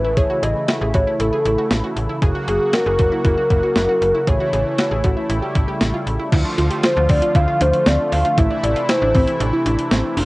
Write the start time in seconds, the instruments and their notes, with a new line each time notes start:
Already playing: fm bass A1, analog synth pad C#3 E3 A3 E4, soft synth lead B4
0.05 synth arpeggio sound E4
0.17 synth arpeggio sound G#4, soft synth lead C#5, kick, closed hi-hat
0.30 synth arpeggio sound F#4
0.43 fm bass A1, synth arpeggio sound G#4, soft synth lead D#5, closed hi-hat
0.68 synth arpeggio sound F#4, soft synth lead E5, snare, closed hi-hat
0.81 fm bass A1, synth arpeggio sound G#4
0.94 fm bass A1, synth arpeggio sound F#4, soft synth lead C#5, kick, closed hi-hat
1.07 synth arpeggio sound E4
1.20 fm bass A1, synth arpeggio sound E4, soft synth lead A4, closed hi-hat
1.33 synth arpeggio sound G#4
1.45 fm bass A1, synth arpeggio sound E4, closed hi-hat
1.58 synth arpeggio sound F#4
1.71 fm bass A1, synth arpeggio sound E4, snare, closed hi-hat
1.84 synth arpeggio sound F#4
1.96 fm bass A1, closed hi-hat
2.09 synth arpeggio sound E4
2.22 fm bass F#1, analog synth pad F#3 A#3 F#4, synth arpeggio sound G#4, kick, closed hi-hat
2.35 synth arpeggio sound F#4
2.48 fm bass F#1, synth arpeggio sound G#4, soft synth lead G#4, closed hi-hat
2.73 synth arpeggio sound F#4, soft synth lead A#4, snare, closed hi-hat
2.86 fm bass F#1, synth arpeggio sound G#4
2.99 fm bass F#1, synth arpeggio sound F#4, kick, closed hi-hat
3.12 synth arpeggio sound E4
3.25 fm bass F#1, synth arpeggio sound E4, soft synth lead A#4, kick, closed hi-hat
3.38 synth arpeggio sound F#4
3.50 fm bass F#1, synth arpeggio sound E4, kick, closed hi-hat
3.63 synth arpeggio sound F#4
3.76 fm bass F#1, synth arpeggio sound E4, snare, closed hi-hat
3.89 synth arpeggio sound F#4
4.02 fm bass F#1, closed hi-hat
4.15 synth arpeggio sound E4
4.27 fm bass A1, analog synth pad E3 A3 E4, synth arpeggio sound G#4, soft synth lead C#5, kick, closed hi-hat
4.40 synth arpeggio sound F#4
4.53 fm bass A1, synth arpeggio sound G#4, closed hi-hat
4.78 synth arpeggio sound F#4, snare, closed hi-hat
4.91 fm bass A1, synth arpeggio sound G#4
5.04 fm bass A1, synth arpeggio sound F#4, kick, closed hi-hat
5.17 synth arpeggio sound E4
5.30 fm bass A1, analog synth pad G3, synth arpeggio sound E4, closed hi-hat
5.43 synth arpeggio sound G4
5.55 fm bass A1, synth arpeggio sound E4, kick, closed hi-hat
5.68 synth arpeggio sound G4
5.81 fm bass A1, synth arpeggio sound E4, snare, closed hi-hat
5.94 synth arpeggio sound F4
6.07 fm bass A1, closed hi-hat
6.20 synth arpeggio sound E4
6.32 fm bass D2, analog synth pad D3 F3 A3 F4, synth arpeggio sound E4, kick, closed hi-hat, crash
6.45 synth arpeggio sound D4
6.58 fm bass D2, synth arpeggio sound F4, closed hi-hat
6.71 synth arpeggio sound G4, closed hi-hat
6.84 synth arpeggio sound F4, soft synth lead C5, snare, closed hi-hat
6.96 fm bass D2, synth arpeggio sound D4
7.09 fm bass D2, synth arpeggio sound C4, soft synth lead D5, kick, open hi-hat
7.22 synth arpeggio sound F4, closed hi-hat
7.35 fm bass D2, synth arpeggio sound E4, soft synth lead F5, kick, closed hi-hat
7.48 synth arpeggio sound F4
7.61 fm bass D2, synth arpeggio sound D4, soft synth lead C5, closed hi-hat
7.73 closed hi-hat
7.86 fm bass D2, synth arpeggio sound C4, soft synth lead D5, snare, closed hi-hat
8.12 fm bass D2, synth arpeggio sound D4, soft synth lead F5, open hi-hat
8.25 synth arpeggio sound F4, closed hi-hat
8.37 fm bass A1, analog synth pad C3 E3 E4, synth arpeggio sound E4, soft synth lead E5, kick, closed hi-hat
8.50 synth arpeggio sound D4
8.63 fm bass A1, synth arpeggio sound E4, soft synth lead D5, closed hi-hat
8.76 synth arpeggio sound F4, closed hi-hat
8.89 synth arpeggio sound E4, soft synth lead C5, snare, closed hi-hat
9.02 fm bass A1, synth arpeggio sound D4
9.14 fm bass A1, synth arpeggio sound C4, kick, open hi-hat
9.27 synth arpeggio sound E4, closed hi-hat
9.40 fm bass A1, synth arpeggio sound D4, closed hi-hat
9.53 synth arpeggio sound E4
9.66 fm bass A1, synth arpeggio sound D4, closed hi-hat
9.79 closed hi-hat
9.91 fm bass A1, synth arpeggio sound C4, snare, closed hi-hat
10.17 fm bass F1, analog synth pad F3 A3 F4, synth arpeggio sound D4, open hi-hat